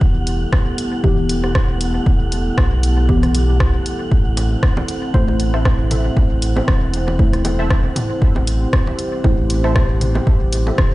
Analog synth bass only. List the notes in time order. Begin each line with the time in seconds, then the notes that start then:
0.01 E1
1.04 E1
2.06 E1
2.58 B1
4.12 A1
5.14 A1
6.17 A1
6.68 E1
8.22 A1
9.24 A1
10.27 A1
10.78 E1